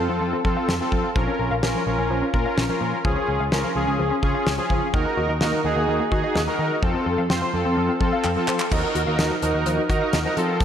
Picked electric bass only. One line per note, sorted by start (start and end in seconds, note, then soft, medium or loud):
0.09 0.20 F2 loud
0.21 0.32 F2 medium
0.45 0.55 F3 medium
0.68 0.79 F2 medium
0.92 1.03 F3 medium
1.16 1.26 A#1 loud
1.39 1.50 A#1 loud
1.51 1.62 A#1 medium
1.63 1.74 A#1 medium
1.87 1.97 A#1 loud
1.98 2.09 A#1 loud
2.10 2.21 A#1 medium
2.34 2.44 A#2 medium
2.58 2.68 A#1 medium
2.81 2.92 A#2 medium
3.05 3.15 C#2 loud
3.28 3.39 C#2 medium
3.40 3.51 C#2 medium
3.52 3.63 C#2 medium
3.75 3.86 C#2 medium
3.87 3.98 C#2 medium
3.99 4.10 C#2 medium
4.23 4.33 C#3 loud
4.47 4.57 C#2 medium
4.70 4.81 C#3 medium
4.94 5.04 D#2 loud
5.17 5.28 D#2 loud
5.29 5.40 D#2 medium
5.41 5.52 D#2 loud
5.64 5.75 D#2 medium
5.76 5.87 D#2 medium
5.88 5.99 D#2 loud
6.12 6.22 D#3 loud
6.35 6.46 D#2 loud
6.59 6.70 D#3 medium
6.83 6.93 F2 loud
7.06 7.17 F2 medium
7.18 7.29 F2 medium
7.30 7.41 F2 loud
7.54 7.64 F2 medium
7.66 7.76 F2 medium
7.77 7.88 F2 medium
8.01 8.11 F3 medium
8.25 8.35 F2 medium
8.48 8.59 F3 loud
8.72 8.82 D#2 loud
8.95 9.06 D#2 medium
9.07 9.18 D#2 loud
9.19 9.29 D#2 loud
9.42 9.53 D#2 medium
9.54 9.65 D#2 medium
9.66 9.77 D#2 loud
9.90 10.00 D#3 loud
10.14 10.24 D#2 medium
10.37 10.65 F3 medium